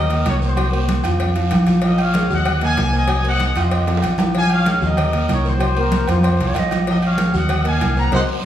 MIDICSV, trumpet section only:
0, 0, Header, 1, 2, 480
1, 0, Start_track
1, 0, Key_signature, -5, "minor"
1, 0, Tempo, 314795
1, 868, Time_signature, 4, 2, 24, 8
1, 12885, End_track
2, 0, Start_track
2, 0, Title_t, "Trumpet section"
2, 0, Program_c, 0, 61
2, 0, Note_on_c, 0, 70, 85
2, 0, Note_on_c, 0, 75, 105
2, 365, Note_off_c, 0, 75, 0
2, 366, Note_off_c, 0, 70, 0
2, 412, Note_on_c, 0, 73, 95
2, 420, Note_on_c, 0, 70, 71
2, 514, Note_off_c, 0, 73, 0
2, 520, Note_off_c, 0, 70, 0
2, 665, Note_on_c, 0, 72, 82
2, 669, Note_on_c, 0, 66, 67
2, 1545, Note_off_c, 0, 72, 0
2, 1547, Note_off_c, 0, 66, 0
2, 2827, Note_on_c, 0, 75, 89
2, 2829, Note_on_c, 0, 70, 70
2, 3032, Note_off_c, 0, 75, 0
2, 3033, Note_off_c, 0, 70, 0
2, 3056, Note_on_c, 0, 73, 76
2, 3061, Note_on_c, 0, 77, 100
2, 3522, Note_off_c, 0, 73, 0
2, 3524, Note_off_c, 0, 77, 0
2, 3554, Note_on_c, 0, 75, 83
2, 3558, Note_on_c, 0, 78, 101
2, 3979, Note_off_c, 0, 75, 0
2, 3981, Note_off_c, 0, 78, 0
2, 4030, Note_on_c, 0, 80, 108
2, 4032, Note_on_c, 0, 77, 78
2, 4457, Note_off_c, 0, 80, 0
2, 4458, Note_off_c, 0, 77, 0
2, 4517, Note_on_c, 0, 80, 111
2, 4519, Note_on_c, 0, 75, 85
2, 4941, Note_off_c, 0, 80, 0
2, 4942, Note_off_c, 0, 75, 0
2, 4990, Note_on_c, 0, 75, 83
2, 4993, Note_on_c, 0, 78, 107
2, 5417, Note_off_c, 0, 75, 0
2, 5419, Note_off_c, 0, 78, 0
2, 5453, Note_on_c, 0, 72, 70
2, 5459, Note_on_c, 0, 75, 81
2, 6161, Note_off_c, 0, 72, 0
2, 6164, Note_off_c, 0, 75, 0
2, 6642, Note_on_c, 0, 80, 119
2, 6647, Note_on_c, 0, 77, 85
2, 6860, Note_off_c, 0, 80, 0
2, 6862, Note_off_c, 0, 77, 0
2, 6894, Note_on_c, 0, 77, 104
2, 6903, Note_on_c, 0, 73, 86
2, 7329, Note_off_c, 0, 77, 0
2, 7334, Note_off_c, 0, 73, 0
2, 7382, Note_on_c, 0, 70, 77
2, 7383, Note_on_c, 0, 75, 102
2, 8083, Note_off_c, 0, 70, 0
2, 8087, Note_off_c, 0, 75, 0
2, 8101, Note_on_c, 0, 70, 77
2, 8115, Note_on_c, 0, 73, 94
2, 8310, Note_off_c, 0, 70, 0
2, 8317, Note_off_c, 0, 73, 0
2, 8352, Note_on_c, 0, 66, 66
2, 8352, Note_on_c, 0, 72, 83
2, 9292, Note_off_c, 0, 66, 0
2, 9292, Note_off_c, 0, 72, 0
2, 10499, Note_on_c, 0, 70, 77
2, 10514, Note_on_c, 0, 75, 95
2, 10601, Note_off_c, 0, 70, 0
2, 10612, Note_off_c, 0, 75, 0
2, 10749, Note_on_c, 0, 73, 78
2, 10761, Note_on_c, 0, 77, 88
2, 11178, Note_off_c, 0, 73, 0
2, 11184, Note_off_c, 0, 77, 0
2, 11223, Note_on_c, 0, 78, 103
2, 11230, Note_on_c, 0, 75, 74
2, 11687, Note_off_c, 0, 78, 0
2, 11690, Note_off_c, 0, 75, 0
2, 11694, Note_on_c, 0, 80, 89
2, 11703, Note_on_c, 0, 77, 81
2, 12129, Note_off_c, 0, 80, 0
2, 12134, Note_off_c, 0, 77, 0
2, 12170, Note_on_c, 0, 82, 102
2, 12181, Note_on_c, 0, 78, 82
2, 12384, Note_off_c, 0, 82, 0
2, 12386, Note_off_c, 0, 78, 0
2, 12400, Note_on_c, 0, 72, 106
2, 12405, Note_on_c, 0, 78, 101
2, 12406, Note_on_c, 0, 75, 96
2, 12512, Note_off_c, 0, 72, 0
2, 12516, Note_off_c, 0, 75, 0
2, 12516, Note_off_c, 0, 78, 0
2, 12885, End_track
0, 0, End_of_file